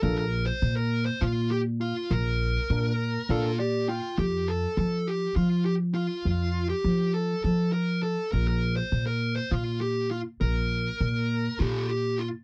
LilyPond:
<<
  \new Staff \with { instrumentName = "Lead electric guitar" } { \time 7/8 \key f \mixolydian \tempo 4 = 101 bes'16 bes'8 c''8 bes'8 c''16 f'8 g'8 f'8 | bes'2 f'8 g'8 f'8 | g'8 a'8 a'8 g'8 f'8 g'8 f'8~ | f'8. g'8. a'8 a'8 bes'8 a'8 |
bes'16 bes'8 c''8 bes'8 c''16 f'8 g'8 f'8 | bes'2 <f' g'>8 g'8 f'8 | }
  \new Staff \with { instrumentName = "Tine electric piano" } { \time 7/8 \key f \mixolydian <bes, bes d' a'>8 r2. | r4 <bes, bes d' bes'>8 r8 <bes, bes d' a'>8 d''8 g''8 | r2. r8 | r2. r8 |
r2. r8 | r2. r8 | }
  \new Staff \with { instrumentName = "Upright bass" } { \clef bass \time 7/8 \key f \mixolydian bes,,4 bes,4 bes,4. | bes,,4 bes,4 bes,4. | f,4 f4 f4. | f,4 f4 f4. |
bes,,4 bes,4 bes,4. | bes,,4 bes,4 bes,4. | }
>>